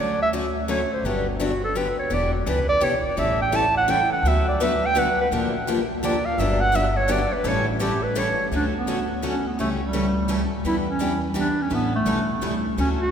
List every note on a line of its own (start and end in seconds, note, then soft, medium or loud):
0.00 0.83 D2 medium
0.00 0.18 D3 medium
0.00 0.19 F#3 medium
0.00 0.19 A3 medium
0.00 0.19 C#4 medium
0.00 0.19 F#4 medium
0.00 0.21 D5 medium
0.22 0.30 E5 loud
0.33 0.44 D3 medium
0.33 0.44 F#3 medium
0.33 0.45 A3 medium
0.33 0.45 C#4 medium
0.33 0.45 F#4 loud
0.68 0.80 D3 medium
0.68 0.80 F#3 loud
0.68 0.80 A3 loud
0.68 0.80 C#4 medium
0.68 0.80 F#4 medium
0.68 0.90 C#5 medium
0.93 1.07 C5 medium
1.03 1.89 G1 medium
1.03 1.26 D3 medium
1.03 1.26 F#3 medium
1.03 1.26 B3 medium
1.03 1.26 D4 medium
1.03 1.26 G4 medium
1.03 1.27 B4 medium
1.29 1.43 D4 soft
1.40 1.51 D3 medium
1.40 1.51 F#3 medium
1.40 1.51 B3 medium
1.40 1.52 D4 medium
1.40 1.63 F#4 medium
1.40 1.52 G4 medium
1.64 1.78 A4 medium
1.75 1.87 D3 medium
1.75 1.87 F#3 medium
1.75 1.87 B3 medium
1.75 1.87 D4 medium
1.75 1.87 G4 medium
1.75 1.98 B4 medium
1.99 2.15 C#5 medium
2.10 2.39 E1 medium
2.10 2.32 E3 medium
2.10 2.32 B3 medium
2.10 2.32 D4 medium
2.10 2.32 G4 medium
2.10 2.33 D5 medium
2.34 2.50 F#4 medium
2.46 2.77 C#2 medium
2.46 2.58 E3 medium
2.46 2.58 B3 medium
2.46 2.58 D4 loud
2.46 2.58 G4 medium
2.46 2.68 B4 medium
2.69 2.85 D5 loud
2.81 3.13 B1 medium
2.81 2.93 E3 medium
2.81 2.93 B3 medium
2.81 2.93 D4 loud
2.81 2.93 G4 loud
2.81 3.04 C#5 medium
3.05 3.20 D5 medium
3.17 4.03 A1 medium
3.17 3.38 E3 medium
3.17 3.39 G3 medium
3.17 3.39 C#4 medium
3.17 3.39 E4 medium
3.17 3.39 A4 medium
3.17 3.40 E5 medium
3.42 3.57 G5 medium
3.52 3.64 E3 medium
3.52 3.64 G3 medium
3.52 3.64 C#4 medium
3.52 3.64 E4 medium
3.52 3.65 A4 medium
3.52 3.77 A5 medium
3.77 3.91 F#5 loud
3.88 4.00 E3 medium
3.88 4.00 G3 medium
3.88 4.00 C#4 medium
3.88 4.00 E4 medium
3.88 4.00 A4 medium
3.88 4.11 G5 loud
4.13 4.29 F#5 medium
4.23 5.09 D2 medium
4.23 4.46 D3 medium
4.23 4.46 F#3 medium
4.23 4.46 A3 medium
4.23 4.46 B3 medium
4.23 4.47 D4 medium
4.23 4.46 F#4 medium
4.23 4.46 B4 medium
4.28 4.48 E5 medium
4.48 4.65 D5 medium
4.60 4.71 D3 medium
4.60 4.72 F#3 medium
4.60 4.72 A3 medium
4.60 4.72 B3 loud
4.60 4.72 D4 loud
4.60 4.72 F#4 medium
4.60 4.72 B4 loud
4.60 4.87 E5 medium
4.86 5.00 G5 loud
4.95 5.07 D3 medium
4.95 5.07 F#3 medium
4.95 5.08 A3 loud
4.95 5.07 B3 medium
4.95 5.08 D4 loud
4.95 5.07 F#4 medium
4.95 5.07 B4 loud
4.95 5.19 F#5 loud
5.21 5.29 B4 medium
5.31 6.17 A#1 medium
5.31 5.53 D3 medium
5.31 5.53 F3 medium
5.31 5.53 A#3 medium
5.31 5.53 D4 medium
5.31 5.53 G4 medium
5.67 5.78 D3 medium
5.67 5.79 F3 medium
5.67 5.79 A#3 medium
5.67 5.79 D4 medium
5.67 5.79 G4 loud
6.03 6.14 D3 medium
6.03 6.14 F3 medium
6.03 6.14 A#3 medium
6.03 6.14 D4 medium
6.03 6.15 G4 loud
6.03 6.27 D5 medium
6.25 6.41 F5 loud
6.38 7.23 G1 loud
6.38 6.60 D3 medium
6.38 6.60 F#3 medium
6.38 6.60 B3 medium
6.38 6.60 D4 medium
6.38 6.60 G4 medium
6.38 6.62 E5 medium
6.60 6.77 F#5 loud
6.74 6.85 D3 medium
6.74 6.86 F#3 medium
6.74 6.86 B3 medium
6.74 6.86 D4 loud
6.74 6.86 G4 medium
6.74 6.98 E5 medium
6.97 7.13 C#5 loud
7.08 7.20 D3 medium
7.08 7.20 F#3 medium
7.08 7.20 B3 loud
7.08 7.20 D4 loud
7.08 7.21 G4 loud
7.08 7.34 D5 medium
7.33 7.49 B4 medium
7.44 8.30 A1 loud
7.44 7.65 E3 medium
7.44 7.66 G3 medium
7.44 7.66 C#4 medium
7.44 7.66 E4 medium
7.44 7.66 A4 medium
7.44 7.68 C#5 loud
7.68 7.82 E4 soft
7.80 7.91 E3 medium
7.80 7.91 G3 medium
7.80 7.92 C#4 medium
7.80 7.92 E4 medium
7.80 8.04 G4 medium
7.80 7.92 A4 loud
8.03 8.20 B4 medium
8.16 8.27 E3 medium
8.16 8.27 G3 medium
8.16 8.27 C#4 loud
8.16 8.27 E4 medium
8.16 8.27 A4 loud
8.16 8.46 C#5 medium
8.51 9.37 D2 medium
8.51 8.73 D3 medium
8.51 8.73 F#3 medium
8.51 8.73 A3 medium
8.51 8.73 C#4 medium
8.51 8.73 F#4 medium
8.51 8.73 A4 medium
8.56 8.65 D4 medium
8.76 9.08 B3 medium
8.87 8.98 D3 medium
8.87 8.98 F#3 medium
8.87 8.98 A3 medium
8.87 8.98 C#4 medium
8.87 8.99 F#4 medium
8.87 8.99 A4 medium
9.22 9.34 D3 medium
9.22 9.34 F#3 medium
9.22 9.34 A3 medium
9.22 9.34 C#4 medium
9.22 9.49 C#4 medium
9.22 9.34 F#4 medium
9.22 9.34 A4 medium
9.48 9.59 B3 medium
9.59 10.44 C#2 medium
9.59 9.79 C#3 medium
9.59 9.79 E3 medium
9.59 9.79 G3 medium
9.59 9.69 A3 medium
9.59 9.80 A3 medium
9.59 9.80 C#4 medium
9.59 9.80 E4 medium
9.59 9.80 G4 medium
9.59 9.80 A4 medium
9.59 9.80 C#5 medium
9.82 10.48 G3 medium
9.93 10.04 C#3 medium
9.93 10.05 E3 medium
9.93 10.05 G3 medium
9.93 10.05 A3 medium
9.93 10.05 C#4 medium
9.93 10.05 E4 medium
9.93 10.05 G4 medium
9.93 10.05 A4 medium
9.93 10.05 C#5 medium
10.28 10.40 C#3 medium
10.28 10.40 E3 medium
10.28 10.40 G3 medium
10.28 10.41 A3 medium
10.28 10.40 C#4 medium
10.28 10.40 E4 medium
10.28 10.40 G4 medium
10.28 10.40 A4 loud
10.28 10.40 C#5 loud
10.64 11.50 E2 medium
10.64 10.86 E3 medium
10.64 10.86 G3 medium
10.64 10.86 B3 medium
10.64 10.86 D4 medium
10.64 10.86 E4 medium
10.64 10.76 E4 medium
10.64 10.86 G4 medium
10.64 10.86 B4 medium
10.88 11.21 C#4 medium
10.99 11.11 E3 medium
10.99 11.11 G3 medium
10.99 11.11 B3 medium
10.99 11.12 D4 medium
10.99 11.11 E4 medium
10.99 11.12 G4 medium
10.99 11.12 B4 loud
11.34 11.46 E3 medium
11.34 11.47 G3 medium
11.34 11.47 B3 medium
11.34 11.47 D4 medium
11.34 11.47 E4 medium
11.34 11.47 G4 medium
11.34 11.47 B4 medium
11.39 11.63 D4 medium
11.62 11.74 C#4 medium
11.71 12.00 A1 medium
11.71 11.92 E3 medium
11.71 11.92 G3 medium
11.71 11.93 B3 medium
11.71 11.92 C#4 medium
11.71 11.92 E4 medium
11.71 11.92 A4 medium
11.95 12.62 A3 medium
12.06 12.37 B1 medium
12.06 12.18 E3 medium
12.06 12.18 G3 medium
12.06 12.18 C#4 medium
12.06 12.18 E4 medium
12.06 12.18 A4 medium
12.41 12.72 C#2 medium
12.41 12.53 E3 medium
12.41 12.53 G3 medium
12.41 12.54 C#4 medium
12.41 12.53 E4 medium
12.41 12.54 A4 medium
12.77 13.11 D2 medium
12.77 12.99 D3 medium
12.77 12.99 F#3 medium
12.77 12.99 A3 medium
12.77 12.99 C#4 medium
12.77 12.89 C#4 medium
12.77 12.99 F#4 medium
12.77 13.00 A4 medium
13.01 13.11 F#4 loud